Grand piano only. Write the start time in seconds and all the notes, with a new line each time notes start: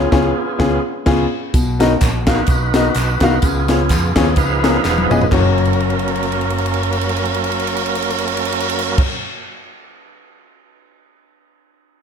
0.12 B3 C#4 F4 G#4 C#5
0.59 B3 C#4 F4 G#4
1.06 B3 C#4 F4 G#4 C#5
1.54 B2
1.79 B3 D#4 F#4 A#4 D#5
2.27 B3 D#4 F#4 A#4 F5
2.74 B3 D#4 F#4 A#4 D#5
3.22 B3 D#4 F#4 A#4 F5
3.43 C#3
3.69 B3 C#4 F4 G#4 C#5
4.16 B3 C#4 F4 G#4 C#5
4.63 B3 C#4 F4 G#4 A#4
5.11 B3 C#4 F4 G#4 D#5
5.30 F#2 A#3 C#4 F#4
5.34 C#5